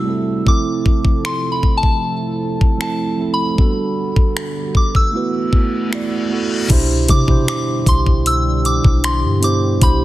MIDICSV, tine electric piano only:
0, 0, Header, 1, 2, 480
1, 0, Start_track
1, 0, Tempo, 779221
1, 287, Time_signature, 4, 2, 24, 8
1, 6188, End_track
2, 0, Start_track
2, 0, Title_t, "Tine electric piano"
2, 0, Program_c, 0, 4
2, 0, Control_c, 0, 64, 127
2, 0, Note_on_c, 0, 55, 65
2, 0, Note_on_c, 0, 57, 63
2, 0, Note_on_c, 0, 60, 60
2, 0, Note_on_c, 0, 64, 61
2, 0, Note_on_c, 0, 66, 72
2, 31, Note_off_c, 0, 55, 0
2, 31, Note_on_c, 0, 55, 61
2, 38, Note_off_c, 0, 57, 0
2, 38, Note_on_c, 0, 57, 59
2, 46, Note_off_c, 0, 60, 0
2, 46, Note_on_c, 0, 60, 55
2, 53, Note_off_c, 0, 64, 0
2, 53, Note_on_c, 0, 64, 57
2, 62, Note_on_c, 0, 69, 72
2, 194, Note_off_c, 0, 55, 0
2, 197, Note_off_c, 0, 57, 0
2, 202, Note_off_c, 0, 60, 0
2, 205, Note_off_c, 0, 64, 0
2, 209, Note_off_c, 0, 69, 0
2, 270, Note_on_c, 0, 53, 69
2, 278, Note_on_c, 0, 57, 62
2, 286, Note_on_c, 0, 60, 62
2, 294, Note_on_c, 0, 64, 62
2, 296, Note_off_c, 0, 66, 0
2, 296, Control_c, 0, 64, 0
2, 301, Note_on_c, 0, 69, 76
2, 397, Control_c, 0, 64, 127
2, 899, Note_off_c, 0, 53, 0
2, 903, Note_off_c, 0, 57, 0
2, 907, Note_off_c, 0, 60, 0
2, 911, Note_off_c, 0, 64, 0
2, 915, Note_off_c, 0, 69, 0
2, 1711, Note_on_c, 0, 53, 67
2, 1717, Note_on_c, 0, 57, 61
2, 1725, Note_on_c, 0, 60, 58
2, 1733, Note_on_c, 0, 64, 59
2, 1740, Note_on_c, 0, 69, 71
2, 1874, Note_off_c, 0, 53, 0
2, 1877, Note_off_c, 0, 57, 0
2, 1881, Note_off_c, 0, 60, 0
2, 1885, Note_off_c, 0, 64, 0
2, 1889, Note_off_c, 0, 69, 0
2, 1952, Note_on_c, 0, 53, 60
2, 1959, Note_on_c, 0, 57, 59
2, 1966, Note_on_c, 0, 60, 58
2, 1974, Note_on_c, 0, 64, 58
2, 1981, Note_on_c, 0, 69, 67
2, 2114, Note_off_c, 0, 53, 0
2, 2118, Note_off_c, 0, 57, 0
2, 2122, Note_off_c, 0, 60, 0
2, 2126, Note_off_c, 0, 64, 0
2, 2129, Note_off_c, 0, 69, 0
2, 2189, Note_on_c, 0, 55, 66
2, 2197, Note_on_c, 0, 59, 64
2, 2205, Note_on_c, 0, 62, 64
2, 2212, Note_on_c, 0, 66, 63
2, 2215, Control_c, 0, 64, 0
2, 2219, Note_on_c, 0, 69, 79
2, 2315, Control_c, 0, 64, 127
2, 2819, Note_off_c, 0, 55, 0
2, 2822, Note_off_c, 0, 59, 0
2, 2826, Note_off_c, 0, 62, 0
2, 2830, Note_off_c, 0, 66, 0
2, 2834, Note_off_c, 0, 69, 0
2, 3153, Note_on_c, 0, 57, 74
2, 3160, Note_on_c, 0, 59, 66
2, 3167, Note_on_c, 0, 64, 67
2, 3175, Control_c, 0, 64, 0
2, 3176, Note_on_c, 0, 66, 68
2, 3182, Note_on_c, 0, 71, 75
2, 3270, Control_c, 0, 64, 127
2, 3544, Note_off_c, 0, 57, 0
2, 3548, Note_off_c, 0, 59, 0
2, 3551, Note_off_c, 0, 64, 0
2, 3555, Note_off_c, 0, 66, 0
2, 3559, Note_off_c, 0, 71, 0
2, 3632, Note_on_c, 0, 57, 74
2, 3639, Note_on_c, 0, 59, 68
2, 3648, Note_on_c, 0, 64, 72
2, 3655, Note_on_c, 0, 66, 75
2, 3663, Note_on_c, 0, 74, 87
2, 3795, Note_off_c, 0, 57, 0
2, 3798, Note_off_c, 0, 59, 0
2, 3802, Note_off_c, 0, 64, 0
2, 3806, Note_off_c, 0, 66, 0
2, 3810, Note_off_c, 0, 74, 0
2, 3872, Note_on_c, 0, 57, 74
2, 3881, Note_on_c, 0, 59, 67
2, 3888, Note_on_c, 0, 64, 64
2, 3895, Note_on_c, 0, 66, 69
2, 3904, Note_on_c, 0, 69, 83
2, 4035, Note_off_c, 0, 57, 0
2, 4039, Note_off_c, 0, 59, 0
2, 4042, Note_off_c, 0, 64, 0
2, 4046, Note_off_c, 0, 66, 0
2, 4051, Note_off_c, 0, 69, 0
2, 4112, Note_on_c, 0, 47, 85
2, 4120, Note_on_c, 0, 62, 82
2, 4128, Note_on_c, 0, 64, 81
2, 4135, Control_c, 0, 64, 0
2, 4135, Note_on_c, 0, 67, 78
2, 4143, Note_on_c, 0, 72, 95
2, 4248, Control_c, 0, 64, 127
2, 4352, Note_off_c, 0, 47, 0
2, 4356, Note_off_c, 0, 62, 0
2, 4360, Note_off_c, 0, 64, 0
2, 4364, Note_off_c, 0, 67, 0
2, 4368, Note_off_c, 0, 72, 0
2, 4471, Note_on_c, 0, 47, 70
2, 4479, Note_on_c, 0, 62, 67
2, 4486, Note_on_c, 0, 64, 69
2, 4493, Note_on_c, 0, 67, 67
2, 4502, Note_on_c, 0, 72, 77
2, 5100, Note_off_c, 0, 47, 0
2, 5103, Note_off_c, 0, 62, 0
2, 5107, Note_off_c, 0, 64, 0
2, 5110, Note_off_c, 0, 67, 0
2, 5115, Note_off_c, 0, 72, 0
2, 5793, Note_on_c, 0, 59, 72
2, 5799, Note_on_c, 0, 62, 65
2, 5807, Note_on_c, 0, 64, 64
2, 5815, Note_on_c, 0, 67, 66
2, 5822, Note_on_c, 0, 72, 76
2, 5955, Note_off_c, 0, 59, 0
2, 5958, Note_off_c, 0, 62, 0
2, 5962, Note_off_c, 0, 64, 0
2, 5966, Note_off_c, 0, 67, 0
2, 5970, Note_off_c, 0, 72, 0
2, 6032, Note_on_c, 0, 47, 68
2, 6040, Note_on_c, 0, 62, 63
2, 6048, Note_on_c, 0, 64, 66
2, 6055, Note_on_c, 0, 67, 67
2, 6063, Note_on_c, 0, 72, 80
2, 6188, Note_off_c, 0, 47, 0
2, 6188, Note_off_c, 0, 62, 0
2, 6188, Note_off_c, 0, 64, 0
2, 6188, Note_off_c, 0, 67, 0
2, 6188, Note_off_c, 0, 72, 0
2, 6188, End_track
0, 0, End_of_file